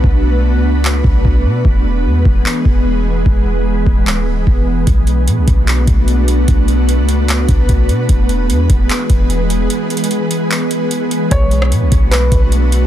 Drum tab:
HH |------------------------------------------------|------------------------------------------------|------------------------------------------------|x-----x-----x-----x-----x-----x-----x-----x-----|
CP |------------------------x-----------------------|------------------------x-----------------------|------------------------x-----------------------|------------------------x-----------------------|
SD |------------------------------------------------|------------------------------------------------|------------------------------------------------|------------------------------------------------|
BD |o-----------------------------o-----o-----------|o-----------------o-----------o-----------------|o-----------------o-----------------o-----------|o-----------------o-----------o-----------------|

HH |x-----x-----x-----x-----x-----x-----x-----x-----|x-----x-----x-----x-----x-----x-----x-----x-----|x-----x-x-x-x-----x-----x-----x-----x-----x-----|x-----x-----x-----x-----x-----x-----x-----x-----|
CP |------------------------x-----------------------|------------------------x-----------------------|------------------------x-----------------------|------------------------x-----------------------|
SD |------------------------------------------------|------------------------------------------------|------------------------------------------------|---------r--------------------------------------|
BD |o-----------------------------o-----o-----------|o-----------------o-----------o-----------------|------------------------------------------------|o-----------------o-----------o-----------------|